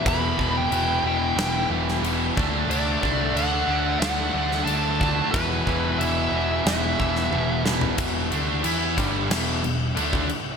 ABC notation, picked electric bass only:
X:1
M:4/4
L:1/8
Q:1/4=91
K:Em
V:1 name="Picked electric bass" clef=bass
E,,, E,,, E,,, E,,, E,,, E,,, E,,, D,, | D,, C,, D,, D,, D,, D,, D,,2 | E,,, E,,, E,,, E,,, E,,, E,,, E,,,2 | E,,, D,, E,, G,,, E,,, E,,, D,, z |]